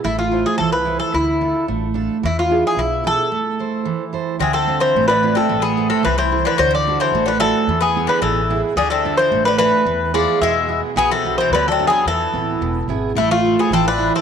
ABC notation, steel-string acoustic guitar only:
X:1
M:2/4
L:1/8
Q:1/4=110
K:Am
V:1 name="Steel-string acoustic guitar"
A, [EAc] E, [EAc] | D, [DFA] A, [DFA] | E, [DE^G] B,, [DEG] | A, [EAc] E, [EAc] |
D, [CDF] A, [CDF] | A, [EAc] E, [EAc] | D, [D^FA] A, [DFA] | E, [B,E^G] B,, [B,EG] |
D, [DFA] A, [DFA] | E, [B,E^G] B,, [B,EG] | B,, [B,D^F] ^F, [B,DF] | E, [B,EB] B,, [B,E^G] |
A, [EAc] E, [EAc] |]